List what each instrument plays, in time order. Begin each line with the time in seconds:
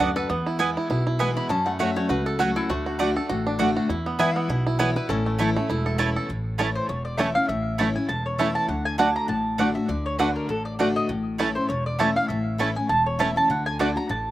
Already playing: five-string banjo F#4 A4
0.00 upright bass D2, steel-string acoustic guitar F#2, five-string banjo D4, resonator guitar played with a steel bar F#5
0.16 five-string banjo A4, resonator guitar played with a steel bar B4
0.29 upright bass E2, steel-string acoustic guitar E2, five-string banjo B3
0.46 five-string banjo E4
0.59 steel-string acoustic guitar E3 G#3 B3 E4, mandolin B3 E4 B4 G#5, five-string banjo B3
0.77 five-string banjo E4
0.89 upright bass B1, steel-string acoustic guitar B2, five-string banjo E4
1.07 five-string banjo E4
1.19 steel-string acoustic guitar E3 G#3 B3 E4, mandolin B3 E4 B4 G#5, five-string banjo B3
1.37 five-string banjo E4, resonator guitar played with a steel bar B5
1.49 upright bass F#2, steel-string acoustic guitar F#2, five-string banjo C#4, resonator guitar played with a steel bar A5
1.66 five-string banjo A3, resonator guitar played with a steel bar F#5
1.79 steel-string acoustic guitar F#3 A3 C#4 F#4, mandolin A3 F#4 C#5 F#5, five-string banjo F#4, resonator guitar played with a steel bar E5
1.96 five-string banjo A3, steel-string acoustic guitar C#4 F#4, resonator guitar played with a steel bar C#5
2.09 upright bass C#2, steel-string acoustic guitar C#3, five-string banjo F#4, resonator guitar played with a steel bar B4
2.26 five-string banjo A4, resonator guitar played with a steel bar A4
2.39 steel-string acoustic guitar F#3 A3 C#4 F#4, mandolin A3 F#4 C#5 F#5, resonator guitar played with a steel bar F#4, five-string banjo F#4
2.56 resonator guitar played with a steel bar E4, five-string banjo A4
2.69 upright bass D2, steel-string acoustic guitar D3, five-string banjo A3, resonator guitar played with a steel bar F#4
2.86 five-string banjo F#4
2.99 steel-string acoustic guitar D3 A3 D4 F#4, mandolin A3 F#4 D5 F#5, five-string banjo A3
3.16 steel-string acoustic guitar D4 F#4, five-string banjo A4
3.29 upright bass A1, steel-string acoustic guitar A2, five-string banjo F#4
3.47 five-string banjo D4
3.59 steel-string acoustic guitar D3 A3 D4 F#4, mandolin A3 F#4 D5 F#5, five-string banjo A3
3.77 five-string banjo F#4
3.89 upright bass E2, steel-string acoustic guitar E2, five-string banjo E4
4.06 five-string banjo B3
4.19 steel-string acoustic guitar E3 G#3 B3 E4, mandolin B3 E4 B4 G#5, five-string banjo E4, resonator guitar played with a steel bar E5
4.36 five-string banjo B3, resonator guitar played with a steel bar F#5
4.49 upright bass B1, steel-string acoustic guitar B2, five-string banjo E4
4.67 five-string banjo E4
4.79 steel-string acoustic guitar E3 G#3 B3 E4, mandolin B3 E4 B4 G#5, five-string banjo E4, resonator guitar played with a steel bar C#5
4.96 steel-string acoustic guitar B3 E4, five-string banjo E4, resonator guitar played with a steel bar B4
5.09 upright bass A1, steel-string acoustic guitar A2, five-string banjo C#4, resonator guitar played with a steel bar A4
5.26 five-string banjo A3
5.38 steel-string acoustic guitar E3 A3 C#4 E4, mandolin A3 E4 C#5 A5, five-string banjo E4
5.56 five-string banjo A3, steel-string acoustic guitar C#4 E4
5.69 upright bass E1, steel-string acoustic guitar E2, five-string banjo E4
5.86 five-string banjo A4
5.98 steel-string acoustic guitar E3 A3 C#4 E4, mandolin A3 E4 C#5 A5, five-string banjo E4
6.16 five-string banjo A4
6.29 upright bass A1, steel-string acoustic guitar A2
6.58 steel-string acoustic guitar E3 A3 C#4 E4, mandolin A3 E4 C#5 A5, five-string banjo A3 C#4 E4
6.75 mandolin C5
6.89 upright bass E1, steel-string acoustic guitar E2, mandolin C#5
7.05 mandolin D5
7.17 steel-string acoustic guitar E3 A3 C#4 E4, mandolin A3 E4 C#5 E5 A5, five-string banjo A3 C#4 E4
7.35 steel-string acoustic guitar C#4 E4, mandolin F5
7.48 upright bass A1, steel-string acoustic guitar A2, mandolin E5
7.78 steel-string acoustic guitar E3 A3 C#4 E4, mandolin A3 E4 C#5 A5, five-string banjo A3 C#4 E4
7.96 steel-string acoustic guitar C#4 E4, mandolin G#5
8.09 upright bass E1, steel-string acoustic guitar E2, mandolin A5
8.26 mandolin C#5
8.38 steel-string acoustic guitar E3 A3 C#4 E4, mandolin A3 E4 C#5 E5 A5, five-string banjo A3 C#4 E4
8.55 mandolin A5
8.68 upright bass D2, steel-string acoustic guitar D3, mandolin F#5
8.85 mandolin G#5
8.98 steel-string acoustic guitar D3 A3 D4 F#4, mandolin A3 F#4 D5 F#5 A5, five-string banjo A3 D4 F#4
9.16 mandolin A#5
9.28 upright bass A1, steel-string acoustic guitar A2, mandolin A5
9.58 steel-string acoustic guitar D3 A3 D4 F#4, mandolin A3 F#4 D5 F#5, five-string banjo A3 D4 F#4
9.75 steel-string acoustic guitar D4 F#4, mandolin E5
9.88 upright bass D2, steel-string acoustic guitar D3, mandolin D5
10.06 mandolin C#5
10.19 steel-string acoustic guitar D3 A3 D4 F#4, mandolin A3 F#4 B4 D5 F#5, five-string banjo A3 D4 F#4
10.36 mandolin A#4
10.49 upright bass A1, steel-string acoustic guitar A2, mandolin A4
10.65 mandolin D5
10.79 steel-string acoustic guitar D3 A3 D4 F#4, mandolin A3 F#4 D5 F#5, five-string banjo A3 D4 F#4
10.96 mandolin D#5
11.09 upright bass A1, steel-string acoustic guitar A2
11.38 steel-string acoustic guitar E3 A3 C#4 E4, mandolin A3 E4 C#5 A5, five-string banjo A3 C#4 E4
11.55 steel-string acoustic guitar C#4 E4, mandolin C5
11.69 upright bass E1, steel-string acoustic guitar E2, mandolin C#5
11.86 mandolin D5
11.99 steel-string acoustic guitar E3 A3 C#4 E4, mandolin A3 E4 C#5 E5 A5, five-string banjo A3 C#4 E4
12.16 steel-string acoustic guitar C#4 E4, mandolin F5
12.28 upright bass A1, steel-string acoustic guitar A2, mandolin E5
12.58 steel-string acoustic guitar E3 A3 C#4 E4, mandolin A3 E4 C#5 A5, five-string banjo A3 C#4 E4
12.75 steel-string acoustic guitar C#4 E4, mandolin G#5
12.89 upright bass E1, steel-string acoustic guitar E2, mandolin A5
13.06 mandolin C#5
13.19 steel-string acoustic guitar E3 A3 C#4 E4, mandolin A3 E4 C#5 E5 A5, five-string banjo A3 C#4 E4
13.36 steel-string acoustic guitar C#4 E4, mandolin A5
13.49 upright bass D2, steel-string acoustic guitar D3, mandolin F#5
13.66 mandolin G#5
13.79 steel-string acoustic guitar D3 A3 D4 F#4, mandolin A3 F#4 D5 F#5 A5, five-string banjo A3 D4 F#4
13.96 steel-string acoustic guitar D4 F#4, mandolin A#5
14.09 upright bass A1, steel-string acoustic guitar A2, mandolin A5